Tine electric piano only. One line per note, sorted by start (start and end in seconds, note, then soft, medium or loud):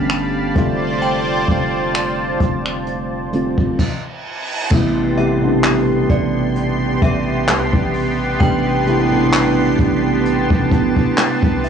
0.00 0.36 D3 medium
0.00 0.36 G3 medium
0.00 0.37 A3 medium
0.00 0.37 B3 medium
0.00 0.58 C#4 medium
0.00 0.41 D4 loud
0.54 2.04 D3 loud
0.54 2.04 G3 medium
0.54 2.05 A3 medium
0.54 2.05 C4 medium
0.54 2.05 F4 loud
3.31 3.78 D3 medium
3.31 3.79 G3 medium
3.31 3.79 A3 medium
3.31 3.80 C4 medium
3.35 3.80 F4 medium
4.70 5.07 C3 medium
4.70 5.08 G3 medium
4.70 5.08 A3 medium
4.70 5.09 B3 medium
4.74 5.09 E4 loud
5.16 5.36 C3 medium
5.16 5.37 G3 medium
5.16 5.37 A3 medium
5.16 5.38 B3 medium
5.20 5.38 G4 loud
5.41 5.48 B2 medium
5.41 6.84 G3 medium
5.41 6.85 A3 medium
5.41 6.85 B3 medium
5.45 6.87 C3 medium
5.45 6.86 D4 medium
8.39 8.76 C3 medium
8.39 8.77 G3 medium
8.39 8.77 A3 medium
8.39 8.78 B3 medium
8.39 8.78 D4 loud
8.85 9.05 C3 medium
8.85 9.06 G3 medium
8.85 9.06 A3 medium
8.85 9.07 B3 medium
8.85 9.07 E4 loud
9.10 9.17 B2 medium
9.10 10.54 G3 medium
9.10 10.54 A3 medium
9.10 10.55 B3 medium
9.10 10.55 D4 loud
9.17 10.56 C3 medium
10.72 11.15 A5 medium
11.18 11.61 G5 medium
11.64 11.69 E5 medium